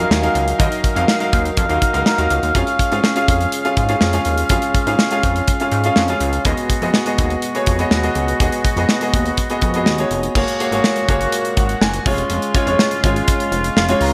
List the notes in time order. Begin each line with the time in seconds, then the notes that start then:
Already playing: D#3 F#3 E5 F5 F#5 G#5
0.00 D#4 F#4 A#4 F5
0.11 D#2, snare
0.22 D#4 F#4 A#4 F5, closed hi-hat
0.35 C#2, closed hi-hat
0.48 closed hi-hat
0.58 D#2 D#4 F#4 A#4 D#5, kick, closed hi-hat
0.72 closed hi-hat
0.84 kick, closed hi-hat
0.95 F2 D#4 F#4 A#4 F5, closed hi-hat
1.08 snare
1.20 D#4 F#4 A#4 F5, closed hi-hat
1.33 D#2, kick, closed hi-hat
1.45 closed hi-hat
1.57 F2, kick, closed hi-hat
1.69 D#2 D#4 F#4 A#4 F5, closed hi-hat
1.82 kick, closed hi-hat
1.93 C#2 D#4 F#4 A#4 F5, closed hi-hat
2.06 A#5, snare
2.18 D#2 D#4 F#4 A#4 F5, closed hi-hat
2.30 C#2 F5, closed hi-hat
2.43 D#2, closed hi-hat
2.54 F2 C#3 G#3 C#4 F4 G#4 F5, kick, closed hi-hat
2.67 closed hi-hat
2.79 kick, closed hi-hat
2.91 G#2 C#4 F4 G#4 F5, closed hi-hat
3.04 snare
3.15 C#4 F4 G#4 F5, closed hi-hat
3.28 F2, kick, closed hi-hat
3.41 closed hi-hat
3.52 closed hi-hat
3.65 C#4 F4 G#4 F5, closed hi-hat
3.77 G#2, kick, closed hi-hat
3.89 C#4 F4 G#4 F5, closed hi-hat
4.01 F2, snare
4.13 C#4 F4 G#4 F5, closed hi-hat
4.25 D#2, closed hi-hat
4.38 closed hi-hat
4.49 F2 C#4 F4 G#4 F5, kick, closed hi-hat
4.62 closed hi-hat
4.75 kick, closed hi-hat
4.87 G#2 C#4 F4 G#4 F5, closed hi-hat
4.99 snare
5.11 C#4 F4 G#4 F5, closed hi-hat
5.23 F2, kick, closed hi-hat
5.36 closed hi-hat
5.48 kick, closed hi-hat
5.60 C#4 F4 G#4 F5, closed hi-hat
5.72 G#2, closed hi-hat
5.84 C#4 F4 G#4 F5, closed hi-hat
5.96 F2, snare
6.08 C#4 F4 G#4 F5, closed hi-hat
6.20 C#2, closed hi-hat
6.33 closed hi-hat
6.45 D#2 B2 B3 F#4 G#4 D#5, kick, closed hi-hat
6.57 closed hi-hat
6.70 kick, closed hi-hat
6.82 F2 B3 F#4 G#4 D#5, closed hi-hat
6.94 snare
7.06 B3 F#4 G#4 D#5, closed hi-hat
7.18 D#2, kick, closed hi-hat
7.30 closed hi-hat
7.42 closed hi-hat
7.55 B3 F#4 G#4 C#5, closed hi-hat
7.66 F2, kick, closed hi-hat
7.79 B3 F#4 G#4 D#5, closed hi-hat
7.91 D#2, snare
8.03 B3 F#4 G#4 D#5, closed hi-hat
8.15 C#2, closed hi-hat
8.28 closed hi-hat
8.40 D#2 B3 F#4 G#4 D#5, kick, closed hi-hat
8.52 closed hi-hat
8.65 kick, closed hi-hat
8.76 F2 B3 F#4 G#4 D#5, closed hi-hat
8.89 snare
9.01 B3 F#4 G#4 D#5, closed hi-hat
9.14 D#2, kick, closed hi-hat
9.26 closed hi-hat
9.37 kick, closed hi-hat
9.50 B3 F#4 G#4 D#5, closed hi-hat
9.61 F2, kick, closed hi-hat
9.74 B3 F#4 G#4 D#5, closed hi-hat
9.86 D#2, snare
9.98 B3 F#4 G#4 C#5, closed hi-hat
10.11 F1, closed hi-hat
10.23 closed hi-hat
10.35 F#1 A#2 G#3 A#3 F#4 G#4 C#5, kick, crash
10.48 closed hi-hat
10.60 A#3 F#4 G#4 C#5, closed hi-hat
10.71 G#1 A#3 F#4 G#4 C#5, closed hi-hat
10.84 snare
10.96 closed hi-hat
11.09 F#1 A#3 F#4 G#4 C#5, kick, closed hi-hat
11.21 closed hi-hat
11.32 closed hi-hat
11.45 closed hi-hat
11.57 G#1 F#5, kick, closed hi-hat
11.69 closed hi-hat
11.81 F#1 G#5, snare
11.94 closed hi-hat
12.06 F1 C#3 G#3 C#4 F4 C#5, kick, open hi-hat
12.18 closed hi-hat
12.30 F1, closed hi-hat
12.42 closed hi-hat
12.55 G#3 C#4 F4 C#5, kick, closed hi-hat
12.66 F1 G#3 C#4 F4 C#5, closed hi-hat
12.79 snare
12.91 closed hi-hat
13.04 G#1 G#3 C#4 F4 C#5, kick, closed hi-hat
13.16 closed hi-hat
13.28 kick, closed hi-hat
13.40 closed hi-hat
13.52 F1, closed hi-hat
13.64 closed hi-hat
13.77 F1 F5, snare
13.89 G#3 C#4 F4 C#5, closed hi-hat
14.01 C#2 A#5, open hi-hat